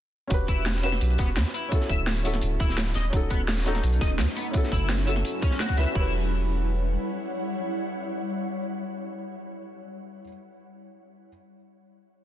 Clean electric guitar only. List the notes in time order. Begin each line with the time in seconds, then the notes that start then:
0.48 E4
0.84 E5
1.19 B3
1.54 E4
1.89 E5
2.25 B3
2.60 E4
2.95 D#5
3.30 B3
3.66 D#4
4.01 D#5
4.36 B3
4.72 E4
5.07 E5
5.42 C#4
5.60 F#4
5.78 E5
5.95 E4